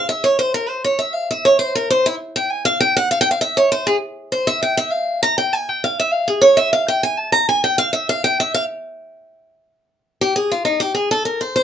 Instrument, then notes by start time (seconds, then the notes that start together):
steel-string acoustic guitar
0.09 E5
0.24 C#5
0.39 C5
0.54 A#4
0.69 C5
0.84 C#5
0.99 E5
1.14 F5
1.31 E5
1.45 C#5
1.59 C5
1.75 A#4
1.90 C5
2.06 E4
2.36 G5
2.51 G#5
2.65 F5
2.80 G5
2.97 F#5
3.11 F5
3.21 G5
3.31 F5
3.41 E5
3.57 C#5
3.72 C5
3.87 G#4
4.32 C5
4.47 E5
4.63 G5
4.77 E5
4.91 F5
5.23 A#5
5.38 G5
5.53 G#5
5.69 G5
5.84 F5
6.00 E5
6.12 F5
6.28 G#4
6.41 C#5
6.57 E5
6.73 F5
6.88 G5
7.03 G#5
7.18 A5
7.32 A#5
7.49 G#5
7.64 G5
7.78 F5
7.93 E5
8.09 F5
8.24 G5
8.40 E5
8.54 F5
10.21 G4
10.36 G#4
10.52 F4
10.65 D#4
10.80 G4
10.95 G#4
11.11 A4
11.25 A#4
11.41 C5
11.56 C5